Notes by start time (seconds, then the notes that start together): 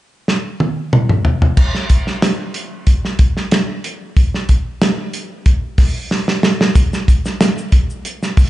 0.28 snare
0.60 high tom
0.93 mid tom
1.09 mid tom
1.25 floor tom
1.42 floor tom
1.57 kick, crash
1.75 snare
1.90 kick, closed hi-hat
2.07 snare
2.22 snare, closed hi-hat
2.54 closed hi-hat
2.87 kick, closed hi-hat
3.05 snare
3.19 kick, closed hi-hat
3.37 snare
3.51 snare, closed hi-hat
3.84 closed hi-hat
4.17 kick, closed hi-hat
4.34 snare
4.49 kick, closed hi-hat
4.82 snare, closed hi-hat
5.13 closed hi-hat
5.46 kick, closed hi-hat
5.78 kick, snare, open hi-hat
6.11 snare
6.28 snare
6.43 snare
6.61 snare
6.75 kick, closed hi-hat, shaker
6.93 snare, shaker
7.08 kick, closed hi-hat, shaker
7.25 snare, shaker
7.41 snare, closed hi-hat, shaker
7.58 shaker
7.72 kick, closed hi-hat
7.90 shaker
8.05 closed hi-hat, shaker
8.23 snare, shaker
8.37 kick, open hi-hat, shaker